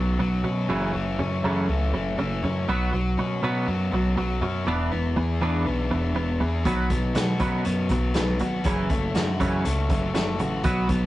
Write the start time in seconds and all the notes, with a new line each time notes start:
Already playing: B1 B2 F#3 B3 C#4
0.19 B1 B2 F#3
0.43 B2 F#3 C#4
0.68 F#1 F#2 C#3 E3
0.94 F#1 F#2 C#3 E3
1.19 F#2 C#3 C#4
1.43 F#2 C#3 E3 A3
1.68 C#2 F#2 C#3 E3
1.93 F#1 F#2 C#3 E3
2.18 F#1 F#2 C#3 E3
2.43 F#2 C#3 C#4
2.68 B1 B2 F#3 B3
2.92 B1 B2 F#3
3.17 B2 F#3 C#4
3.42 B2 F#3 B3
3.67 F#2 B2 F#3
3.92 B1 B2 F#3
4.17 B1 B2 F#3
4.41 F#2 B2 F#3 C#4
4.66 E1 E3 B3 D4
4.91 E1 E3 B3
5.16 E2 E3 B3 G#4
5.41 E2 E3 B3 D4
5.65 B1 E3 B3
5.90 E1 E3 B3
6.15 E1 E3 B3
6.40 E2 E3 B3 G#4
6.64 B1 B2 F#3 B3, kick, closed hi-hat
6.90 B1 B2 F#3 B3, kick, closed hi-hat
7.15 B2 F#3 F#4, snare, closed hi-hat
7.40 B2 F#3 B3 C#4, kick, closed hi-hat
7.64 F#2 B2 F#3 B3, closed hi-hat
7.89 B1 B2 F#3, kick, closed hi-hat
8.14 B1 B2 F#3 B3, snare, closed hi-hat
8.39 G#1 B2 F#3 F#4, closed hi-hat
8.64 F#1 F#2 C#3 E3, kick, closed hi-hat
8.89 F#1 F#2 C#3 A3, kick, closed hi-hat
9.15 F#2 C#3 F#4, snare, closed hi-hat
9.40 F#2 C#3 E3 C#4, kick, closed hi-hat
9.65 C#2 F#2 C#3 A3, closed hi-hat
9.90 F#1 F#2 C#3 E3, kick, closed hi-hat
10.14 F#1 F#2 C#3 A3, snare, closed hi-hat
10.39 A1 F#2 C#3 F#4, closed hi-hat
10.64 B1 B2 F#3 B3, kick, closed hi-hat
10.89 B1 B2 F#3 B3, kick, closed hi-hat